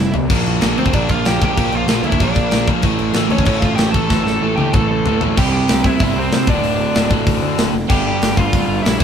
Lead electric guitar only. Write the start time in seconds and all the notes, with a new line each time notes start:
Already playing: E4 E5
0.78 C4 C5
0.93 D4 D5
1.09 F4 F5
1.26 G4 G5
1.43 G4 G5
1.75 F4 F5
2.05 E4 E5
2.23 D4 D5
3.32 C#4 C#5
3.46 C#4 C#5
3.60 F4 F5
3.76 G4 G5
3.92 A4 A5
4.24 A4 A5
4.56 G4 G5
4.74 A4 A5
5.38 G4 G5
5.52 G4 G5
5.86 E4 E5
6.18 C4 C5
6.33 C4 C5
6.48 D4 D5
7.89 G4 G5
8.07 G4 G5
8.37 F4 F5
8.83 E4 E5